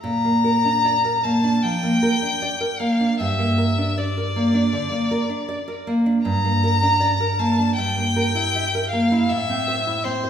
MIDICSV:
0, 0, Header, 1, 3, 480
1, 0, Start_track
1, 0, Tempo, 788436
1, 22, Time_signature, 4, 2, 24, 8
1, 2421, Tempo, 758534
1, 6421, End_track
2, 0, Start_track
2, 0, Title_t, "Violin"
2, 0, Program_c, 0, 40
2, 26, Note_on_c, 0, 82, 70
2, 750, Note_on_c, 0, 81, 59
2, 759, Note_off_c, 0, 82, 0
2, 990, Note_on_c, 0, 79, 65
2, 999, Note_off_c, 0, 81, 0
2, 1707, Note_on_c, 0, 77, 54
2, 1716, Note_off_c, 0, 79, 0
2, 1943, Note_off_c, 0, 77, 0
2, 1947, Note_on_c, 0, 76, 62
2, 2424, Note_on_c, 0, 74, 62
2, 2434, Note_off_c, 0, 76, 0
2, 3621, Note_off_c, 0, 74, 0
2, 3857, Note_on_c, 0, 82, 72
2, 4579, Note_on_c, 0, 81, 65
2, 4589, Note_off_c, 0, 82, 0
2, 4813, Note_off_c, 0, 81, 0
2, 4817, Note_on_c, 0, 79, 75
2, 5532, Note_off_c, 0, 79, 0
2, 5540, Note_on_c, 0, 77, 65
2, 5781, Note_on_c, 0, 76, 73
2, 5790, Note_off_c, 0, 77, 0
2, 6257, Note_on_c, 0, 72, 69
2, 6266, Note_off_c, 0, 76, 0
2, 6421, Note_off_c, 0, 72, 0
2, 6421, End_track
3, 0, Start_track
3, 0, Title_t, "Nylon-string guitar"
3, 0, Program_c, 1, 24
3, 22, Note_on_c, 1, 46, 44
3, 150, Note_on_c, 1, 58, 35
3, 270, Note_on_c, 1, 70, 34
3, 343, Note_off_c, 1, 58, 0
3, 396, Note_on_c, 1, 62, 33
3, 462, Note_off_c, 1, 70, 0
3, 517, Note_on_c, 1, 74, 37
3, 585, Note_off_c, 1, 62, 0
3, 637, Note_on_c, 1, 70, 35
3, 706, Note_off_c, 1, 74, 0
3, 758, Note_on_c, 1, 58, 36
3, 826, Note_off_c, 1, 70, 0
3, 875, Note_on_c, 1, 62, 36
3, 947, Note_off_c, 1, 58, 0
3, 967, Note_off_c, 1, 46, 0
3, 1000, Note_on_c, 1, 53, 35
3, 1065, Note_off_c, 1, 62, 0
3, 1115, Note_on_c, 1, 58, 35
3, 1187, Note_off_c, 1, 53, 0
3, 1234, Note_on_c, 1, 70, 39
3, 1303, Note_off_c, 1, 58, 0
3, 1354, Note_on_c, 1, 62, 33
3, 1421, Note_off_c, 1, 70, 0
3, 1474, Note_on_c, 1, 74, 39
3, 1541, Note_off_c, 1, 62, 0
3, 1587, Note_on_c, 1, 70, 36
3, 1661, Note_off_c, 1, 74, 0
3, 1704, Note_on_c, 1, 58, 35
3, 1778, Note_off_c, 1, 70, 0
3, 1828, Note_on_c, 1, 62, 35
3, 1897, Note_off_c, 1, 58, 0
3, 1946, Note_off_c, 1, 62, 0
3, 1947, Note_on_c, 1, 43, 43
3, 2062, Note_on_c, 1, 58, 38
3, 2178, Note_on_c, 1, 70, 36
3, 2254, Note_off_c, 1, 58, 0
3, 2302, Note_on_c, 1, 62, 35
3, 2371, Note_off_c, 1, 70, 0
3, 2421, Note_on_c, 1, 74, 39
3, 2494, Note_off_c, 1, 62, 0
3, 2547, Note_on_c, 1, 70, 35
3, 2615, Note_off_c, 1, 74, 0
3, 2664, Note_on_c, 1, 58, 34
3, 2737, Note_off_c, 1, 70, 0
3, 2777, Note_on_c, 1, 62, 37
3, 2854, Note_off_c, 1, 58, 0
3, 2877, Note_off_c, 1, 43, 0
3, 2897, Note_on_c, 1, 50, 37
3, 2969, Note_off_c, 1, 62, 0
3, 3013, Note_off_c, 1, 50, 0
3, 3016, Note_on_c, 1, 58, 35
3, 3140, Note_on_c, 1, 70, 38
3, 3207, Note_off_c, 1, 58, 0
3, 3256, Note_on_c, 1, 62, 36
3, 3330, Note_off_c, 1, 70, 0
3, 3376, Note_on_c, 1, 74, 41
3, 3449, Note_off_c, 1, 62, 0
3, 3497, Note_on_c, 1, 70, 39
3, 3570, Note_off_c, 1, 74, 0
3, 3620, Note_on_c, 1, 58, 37
3, 3691, Note_off_c, 1, 70, 0
3, 3740, Note_on_c, 1, 62, 37
3, 3814, Note_off_c, 1, 58, 0
3, 3860, Note_on_c, 1, 43, 50
3, 3862, Note_off_c, 1, 62, 0
3, 3983, Note_on_c, 1, 58, 39
3, 4105, Note_on_c, 1, 70, 39
3, 4177, Note_off_c, 1, 58, 0
3, 4224, Note_on_c, 1, 62, 38
3, 4297, Note_off_c, 1, 70, 0
3, 4337, Note_on_c, 1, 74, 44
3, 4415, Note_off_c, 1, 62, 0
3, 4463, Note_on_c, 1, 70, 38
3, 4531, Note_off_c, 1, 74, 0
3, 4582, Note_on_c, 1, 58, 38
3, 4654, Note_off_c, 1, 70, 0
3, 4706, Note_on_c, 1, 62, 37
3, 4774, Note_off_c, 1, 58, 0
3, 4796, Note_off_c, 1, 43, 0
3, 4824, Note_off_c, 1, 62, 0
3, 4828, Note_on_c, 1, 43, 51
3, 4952, Note_on_c, 1, 58, 39
3, 5071, Note_on_c, 1, 70, 41
3, 5142, Note_off_c, 1, 58, 0
3, 5189, Note_on_c, 1, 64, 39
3, 5262, Note_off_c, 1, 70, 0
3, 5316, Note_on_c, 1, 76, 43
3, 5382, Note_off_c, 1, 64, 0
3, 5440, Note_on_c, 1, 70, 39
3, 5505, Note_off_c, 1, 76, 0
3, 5555, Note_on_c, 1, 58, 38
3, 5626, Note_off_c, 1, 70, 0
3, 5675, Note_on_c, 1, 64, 39
3, 5742, Note_off_c, 1, 58, 0
3, 5764, Note_off_c, 1, 43, 0
3, 5790, Note_off_c, 1, 64, 0
3, 5791, Note_on_c, 1, 45, 52
3, 5914, Note_on_c, 1, 60, 41
3, 6029, Note_on_c, 1, 72, 38
3, 6098, Note_off_c, 1, 60, 0
3, 6149, Note_on_c, 1, 64, 41
3, 6216, Note_off_c, 1, 72, 0
3, 6265, Note_on_c, 1, 60, 44
3, 6336, Note_off_c, 1, 64, 0
3, 6383, Note_on_c, 1, 72, 42
3, 6421, Note_off_c, 1, 45, 0
3, 6421, Note_off_c, 1, 60, 0
3, 6421, Note_off_c, 1, 72, 0
3, 6421, End_track
0, 0, End_of_file